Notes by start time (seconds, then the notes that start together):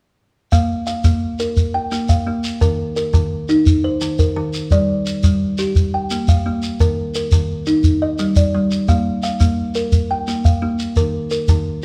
0.52 A#3 F5, shekere
0.87 F5, shekere
1.04 A#3, shekere
1.39 A#4, shekere
1.57 shekere
1.74 G5
1.92 A#3, shekere
2.09 F5, shekere
2.27 A#3
2.44 shekere
2.61 D#3 A#4, shekere
2.96 A#4, shekere
3.13 D#3, shekere
3.49 D#4, shekere
3.66 shekere
3.84 C5
4.01 D#3, shekere
4.19 A#4, shekere
4.36 D#3
4.54 shekere
4.71 G3 D5, shekere
5.06 shekere
5.23 G3, shekere
5.58 G4, shekere
5.76 shekere
5.94 G5
6.11 A#3, shekere
6.28 F5, shekere
6.46 A#3
6.63 shekere
6.80 D#3 A#4, shekere
7.15 A#4, shekere
7.32 D#3, shekere
7.66 D#4, shekere
7.84 shekere
8.02 D#5
8.19 G3, shekere
8.36 D5, shekere
8.54 G3
8.71 shekere
8.88 A#3 F5, shekere
9.23 F5, shekere
9.40 A#3, shekere
9.75 A#4, shekere
9.92 shekere
10.11 G5
10.28 A#3, shekere
10.45 F5, shekere
10.62 A#3
10.79 shekere
10.96 D#3 A#4, shekere
11.31 A#4, shekere
11.48 D#3, shekere